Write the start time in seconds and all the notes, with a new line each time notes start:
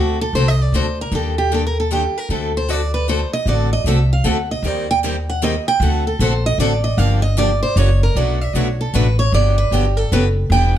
Already playing: D2 D3 A3 C4 F#4 A4
0.21 A4
0.33 C2 D3 A3 C4 F#4 A4 C5
0.48 D#5
0.63 D5
0.72 D2 D3 A3 C4 F#4 A4 C5
1.01 A#4
1.12 D#2 D#3 G3 A#3 D4 G4 A4
1.38 G4
1.52 D#3 G3 A#3 D4 G4 A4
1.67 A#4
1.80 A4
1.91 D#3 G3 A#3 D4 G4
2.18 A#4
2.29 D2 D3 A3 C4 F#4 A4
2.57 C5
2.68 D3 A3 C4 F#4 A4 D5
2.94 B4
3.08 D3 A3 C4 F#4 A4 C5
3.33 D#5
3.46 A1 D3 A3 C4 F#4 A4 D5
3.73 D#5
3.84 C2 D3 A3 C4 F#4 A4 E5
4.13 F5
4.24 D2 D3 A3 C4 F#4 A4 F#5
4.51 D#5
4.63 D#2 D#3 G3 A#3 C4 D#4 G4 A#4 C5
4.67 D5
4.91 G5
5.04 D#3 G3 A#3 C4 D#4 G4 A#4 C5
5.30 F#5
5.42 D#3 G3 A#3 C4 D#4 G4 A#4 C5 D#5
5.68 G5
5.80 D2 D3 A3 C4 F#4 A4 F#5
6.07 A4
6.19 A#1 D3 A3 C4 F#4 A4 C5
6.46 D#5
6.58 A1 D3 A3 C4 F#4 A4 D5
6.84 D#5
6.97 G1 D3 F3 A#3 D4 G4 F5
7.22 D#5
7.37 D3 F3 A#3 D4 G4 D5
7.63 C5
7.76 F#1 C#3 E3 F#3 A#3 C#4 E4 F#4 A#4 C#5
8.03 A#4
8.15 B1 B2 F#3 A3 D4 F#4 B4 D5
8.41 E5
8.54 B1 B2 F#3 A3 D4 F#4 B4 C#5
8.81 A4
8.94 A1 B2 F#3 A3 D4 F#4 B4
9.19 C#5
9.32 G1 D3 F#3 B3 D4 G4 D5
9.58 B4
9.71 G1 D3 F#3 B3 D4 G4
9.97 A4
10.12 F#1 D3 F#3 B3 D4 G4 B4
10.50 E1 E3 G3 B3 D4 E4 G4 B4 G5